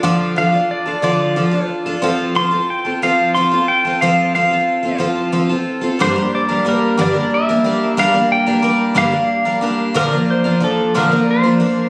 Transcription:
X:1
M:6/8
L:1/16
Q:3/8=61
K:Gm
V:1 name="Pedal steel guitar"
g2 f2 d2 d4 z2 | z2 c'2 g2 f2 c'2 g2 | f2 f4 z6 | c2 d2 B2 d2 =e4 |
f2 g4 f4 z2 | B2 c2 A2 B2 c4 |]
V:2 name="Twelve-string acoustic guitar"
[D,F,DFA]2 [F,DFA] [DFA]2 [DFA] [D,F,DFA]2 [F,DFA] [DFA]2 [DFA] | [F,CFA]2 [F,CFA] [CFA]2 [CFA] [F,CFA]2 [F,CFA] [CFA]2 [CFA] | [F,CFA]2 [F,CFA] [CFA]2 [CFA] [F,CFA]2 [F,CFA] [CFA]2 [CFA] | [G,,D,G,B,DB] [G,B,DB]2 [G,B,DB] [G,B,DB]2 [G,,D,G,B,DB] [G,B,DB]2 [G,B,DB] [G,B,DB]2 |
[G,,D,G,B,DB] [G,B,DB]2 [G,B,DB] [G,B,DB]2 [G,,D,G,B,DB] [G,B,DB]2 [G,B,DB] [G,B,DB]2 | [B,,D,F,B,DB] [F,B,DB]2 [F,B,DB] [F,B,D]2 [B,,D,F,B,DB] [F,B,DB]2 [F,B,DB] [F,B,DB]2 |]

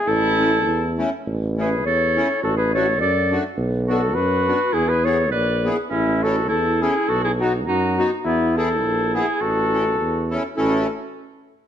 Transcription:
X:1
M:2/4
L:1/16
Q:"Swing" 1/4=103
K:A
V:1 name="Flugelhorn"
A6 z2 | z2 B2 c4 | A B c2 d3 z | z2 A2 B4 |
G B c2 d3 z | E2 A2 A2 G2 | A G F2 F3 z | E2 A4 G2 |
A6 z2 | A2 z6 |]
V:2 name="Clarinet"
E6 z2 | z2 G2 A4 | F G A2 A3 z | z2 F2 F4 |
E G A2 B3 z | C2 F2 E2 E2 | F E ^D2 D3 z | B,2 E4 E2 |
F6 z2 | F2 z6 |]
V:3 name="Accordion"
z2 [A,CE]2 z2 [A,CE]2 | z2 [A,CE]2 z2 [A,CE]2 | z2 [A,DF]2 z2 [A,DF]2 | z2 [B,DF]2 z2 [B,DF]2 |
z2 [B,EG]2 z2 [B,EG]2 | z2 [CEA]2 z2 [CEA]2 | z2 [B,^DF]2 z2 [B,DF]2 | z2 [B,EG]2 z2 [B,EG]2 |
z2 [CEA]2 z2 [CEA]2 | [CEA]2 z6 |]
V:4 name="Tuba" clef=bass
A,,,4 E,,4 | A,,,4 E,,4 | A,,,4 F,,4 | B,,,4 F,,4 |
E,,4 _B,,,4 | A,,,4 E,,4 | B,,,4 F,,4 | E,,4 _B,,,4 |
A,,,4 E,,4 | A,,,2 z6 |]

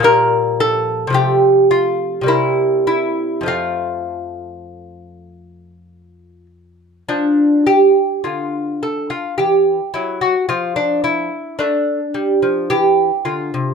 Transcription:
X:1
M:3/4
L:1/16
Q:1/4=53
K:F
V:1 name="Lute"
B2 A2 G2 F2 E2 E2 | F8- F2 z2 | [K:Dm] D2 G2 F2 A F G2 E ^F | F D E2 D4 G2 F2 |]
V:2 name="Lute" clef=bass
[B,,F,G,]4 [C,F,A,]4 [C,G,B,]4 | [F,,F,A,]12 | [K:Dm] F,4 D,4 E,2 ^F,2 | F,4 A,2 G, F, E,2 D, C, |]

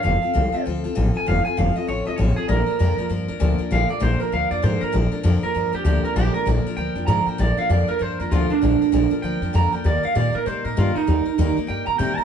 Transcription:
X:1
M:4/4
L:1/8
Q:"Swing" 1/4=196
K:Bb
V:1 name="Clean electric guitar"
f4 z3 _a | f _a f e _d e d _A | B4 z4 | f d c B f d c B |
z3 B2 G G B | G B z2 g2 b g | d f d B c B F D- | D3 z g2 b g |
d f d B c B F E- | E3 z g b g b |]
V:2 name="Steel-string acoustic guitar"
[F,CFA] [CFA] [F,CFA] [CFA] [F,CFA] [CFA] [F,CFA] [CFA] | [F,CFA] [CFA] [F,CFA] [CFA] [F,CFA] [CFA] [F,CFA] [CFA] | [B,,D,F,B,DB] [F,B,DB] [B,,D,F,B,DB] [F,B,DB] [F,B,DB] [F,B,DB] [B,,D,F,B,DB] [F,B,DB] | [B,,D,F,B,DB] [F,B,DB] [B,,D,F,B,DB] [F,B,DB] [F,B,DB] [F,B,DB] [B,,D,F,B,DB] [F,B,DB] |
[B,,D,F,B,DB] [F,B,DB] [B,,D,F,B,DB] [F,B,DB] [F,B,DB] [F,B,DB] [B,,D,F,B,DB] [F,B,DB] | [B,,D,F,B,DB] [F,B,DB] [B,,D,F,B,DB] [F,B,DB] [F,B,DB] [F,B,DB] [B,,D,F,B,DB] [F,B,DB] | [B,,D,F,B,DB] [F,B,DB] [B,,D,F,B,DB] [F,B,DB] [F,B,DB] [F,B,DB] [B,,D,F,B,DB] [F,B,DB] | [B,,D,F,B,DB] [F,B,DB] [B,,D,F,B,DB] [F,B,DB] [F,B,DB] [F,B,DB] [B,,D,F,B,DB] [F,B,DB] |
[E,G,B,EB] [B,EB] [E,G,B,EB] [B,EB] [G,B,EB] [B,EB] [E,G,B,EB] [B,EB] | [E,G,B,EB] [B,EB] [E,G,B,EB] [B,EB] [G,B,EB] [B,EB] [E,G,B,EB] [B,EB] |]
V:3 name="Upright bass" clef=bass
F,,, z C,, z D,, C,, A,,, z | F,,, z F,,, z A,,, C,, A,,, z | B,,, z F,, z G,, F,, D,, z | B,,, z B,,, z D,, F,, _A,, z |
B,,, z F,, z G,, F,, D,, z | B,,, z B,,, z D,, F,, _A,, z | B,,, z F,, z G,, F,, D,, z | B,,, z B,,, z D,, F,, F,, z |
E,, z B,, z C, B,, G,, z | E,, z E,, z G,, B,, C, z |]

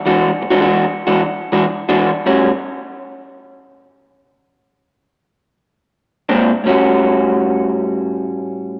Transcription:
X:1
M:4/4
L:1/16
Q:"Swing" 1/4=109
K:Amix
V:1 name="Clean electric guitar"
[E,^G,DF] z2 [E,G,DF] [E,G,DF] z2 [E,G,DF] z2 [E,G,DF] z2 [E,G,DF] z2 | [A,,G,CF] z12 z3 | z12 z [_B,,_A,=CD] z2 | [A,,G,CF]16 |]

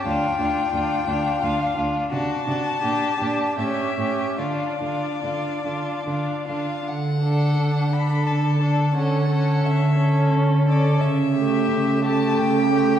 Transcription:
X:1
M:3/4
L:1/8
Q:1/4=87
K:Dm
V:1 name="Violin"
g4 f z | a4 e2 | d4- d f | [K:D] f3 b a2 |
f2 e2 z d | e3 a g2 |]
V:2 name="Violin"
F F F F F F | ^F F G G G G | F F F F F F | [K:D] z A2 A2 A |
A A2 A2 A | z G2 G2 G |]
V:3 name="Viola"
D D D D D D | D D D D ^C C | D D D D D D | [K:D] z D2 D2 D |
C C2 C2 C | z A,2 A,2 A, |]
V:4 name="Cello" clef=bass
D,, D,, D,, D,, D,, D,, | C, C, B,, B,, A,, A,, | D, D, D, D, D, D, | [K:D] D,2 D,2 D,2 |
D,2 D,2 D,2 | C,2 C,2 C,2 |]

